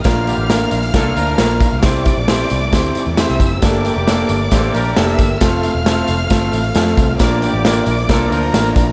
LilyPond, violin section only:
\new Staff \with { instrumentName = "Violin section" } { \time 4/4 \key bes \lydian \tempo 4 = 134 <f'' f'''>1 | <d'' d'''>2. <e'' e'''>4 | <d'' d'''>2. <e'' e'''>4 | <f'' f'''>1 |
<d'' d'''>2~ <d'' d'''>8 <bes' bes''>4. | }